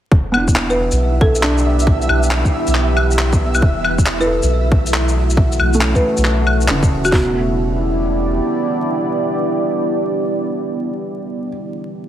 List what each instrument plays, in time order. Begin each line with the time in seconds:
0.11 sub bass E1, ambient pad E3 B3 E4 G4 E5, synth texture E5, kick
0.32 felt piano B3, claves
0.37 felt piano D4
0.42 felt piano E4
0.48 kick, shaker
0.56 clap
0.70 marimba B4, shaker
0.92 sub bass B1, shaker
1.21 marimba A4, kick
1.35 shaker
1.43 felt piano D4, clap
1.58 shaker
1.79 shaker
1.87 kick
2.02 shaker
2.09 sub bass B1, claves
2.23 shaker
2.31 clap
2.45 kick, shaker
2.67 sub bass B1, shaker
2.75 clap
2.97 claves
3.11 shaker
3.19 clap
3.33 kick, shaker
3.55 claves, shaker
3.62 sub bass E1, ambient pad A3 F#4, kick
3.84 claves
3.98 kick, shaker
4.06 clap
4.20 felt piano E4, marimba B4, shaker
4.25 felt piano A4
4.43 sub bass B1, shaker
4.72 kick
4.86 shaker
4.94 clap
5.08 shaker
5.30 shaker
5.37 kick
5.52 shaker
5.60 sub bass B1, claves
5.74 felt piano A3, shaker
5.79 felt piano C#4, clap
5.95 marimba B4, kick, shaker
6.17 sub bass B1, shaker
6.25 clap
6.47 claves
6.61 shaker
6.68 sub bass E1, felt piano C#3, clap
6.83 kick, shaker
6.91 sub bass E1
7.05 marimba F#4, claves, shaker
7.12 sub bass E1, felt piano B2, ambient pad B3 D4 E4 G4 D5, marimba F#4, kick, snare